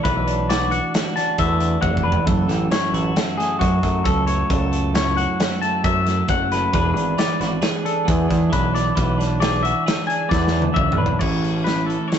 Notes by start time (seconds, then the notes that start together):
Already playing: A3 F#4
0.03 B1 E3 B4, kick, closed hi-hat
0.27 D4, closed hi-hat
0.49 F#4 D5, snare, closed hi-hat
0.71 F#4 F#5, closed hi-hat
0.94 F#4, snare, closed hi-hat
1.16 D4 A5, snare, closed hi-hat
1.38 E2 A3 E5, kick, closed hi-hat
1.60 D4, closed hi-hat
1.81 F1 E3 F#5, kick
1.97 kick
2.03 D4 B4
2.12 floor tom
2.26 F#1 F#2 A4, kick, closed hi-hat
2.48 A1 A3, snare, closed hi-hat
2.71 C#4 C#5, snare, closed hi-hat
2.81 E4
2.92 A1 F#4 A4, closed hi-hat
3.16 E4, snare, closed hi-hat
3.37 A3 G#4, snare, closed hi-hat
3.59 F#2 F#3 F#4, kick, closed hi-hat
3.83 F#2 A3, kick, closed hi-hat
4.04 C#2 F#2 A4, kick, closed hi-hat
4.27 A3 C#5, closed hi-hat
4.50 C#2 F#2 A4, kick, closed hi-hat
4.72 A3, closed hi-hat
4.94 E4 C#5, snare, closed hi-hat
5.17 F#4 F#5, closed hi-hat
5.40 C#4, snare, closed hi-hat
5.51 E4
5.62 A3 A5, closed hi-hat
5.84 F#2 F#3 E5, kick, closed hi-hat
6.07 A3, snare, closed hi-hat
6.28 F#1 F#2 F#5, kick, closed hi-hat
6.52 A3 B4, snare, closed hi-hat
6.73 E1 E3 B3 D4 G#4 B4, kick, closed hi-hat
6.95 G#1 D4, closed hi-hat
7.18 G#4 D5, snare, closed hi-hat
7.39 G#1 F#4 B4, snare, closed hi-hat
7.62 G#4, snare, closed hi-hat
7.83 D4 A4, closed hi-hat
8.05 E2 B3 G#4, kick, closed hi-hat
8.28 E2 D4, kick, snare, closed hi-hat
8.50 B1 E3 B4, kick, closed hi-hat
8.73 D4 D5, snare, closed hi-hat
8.95 B1 E3 B4, kick, closed hi-hat
9.18 D4, snare, closed hi-hat
9.40 G#4 D5, snare, closed hi-hat
9.63 F#4 E5, closed hi-hat
9.86 G#4, snare, closed hi-hat
10.07 D4 G#5, closed hi-hat
10.29 E2 B3 D5, kick, snare
10.47 D4, snare
10.62 high tom
10.73 C#2 E3 E5, kick, mid tom
10.92 mid tom
10.97 B1 D4 B4
11.06 floor tom
11.19 A1 A2 C#4 E4 G#4 C#5, kick, crash
11.44 closed hi-hat
11.64 B4, snare, closed hi-hat
11.86 E3 E4 A4
11.90 closed hi-hat
12.08 C#5
12.12 snare, closed hi-hat